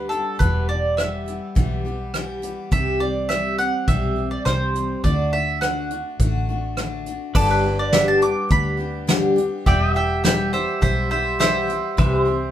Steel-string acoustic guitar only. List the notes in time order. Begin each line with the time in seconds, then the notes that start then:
Already playing: G3 B3 D4
0.11 G3 B3 D4 G4
0.41 E2 B2 E3 G3 B3 G4
0.69 E3 G3 B3 G4
0.98 E3 G3 B3 G4
1.26 E3 G3 B3 G4
1.55 E2 B2 E3 G3 B3 G4
1.85 E3 G3 B3 G4
2.14 E3 G3 B3 G4
2.42 E3 G3 B3 G4
2.71 C3 E3 G3 C4 G4
3.00 G3 C4 G4
3.29 E3 G3 C4 G4
3.58 G3 C4 G4
3.88 C3 E3 G3 C4 G4
4.16 G3 C4 G4
4.46 E3 G3 C4 G4
4.75 G3 C4 G4
5.05 D3 A3 D4 F#4
5.33 A3 D4 F#4
5.62 D3 A3 D4 F#4
5.91 A3 D4 F#4
6.20 D3 A3 D4 F#4
6.49 A3 D4 F#4
6.78 D3 A3 D4 F#4
7.07 A3 D4 F#4
7.36 G2 D3 G3 B3 D4 G4
7.64 G3 B3 D4 G4
7.93 G2 D3 G3 B3 D4 G4
8.21 G3 B3 D4 G4
8.49 G3 B3 D4 G4
8.77 G3 B3 D4 G4
9.07 G2 D3 G3 B3 D4 G4
9.36 G3 B3 D4 G4
9.66 E2 B2 E3 G3 B3 G4
9.94 E3 G3 B3 G4
10.24 E2 B2 E3 G3 B3 G4
10.53 E3 G3 B3 G4
10.81 E3 G3 B3 G4
11.10 E3 G3 B3 G4
11.39 E2 B2 E3 G3 B3 G4
11.67 E3 G3 B3 G4
11.97 C3 E3 G3 C4 G4
12.25 G3 C4 G4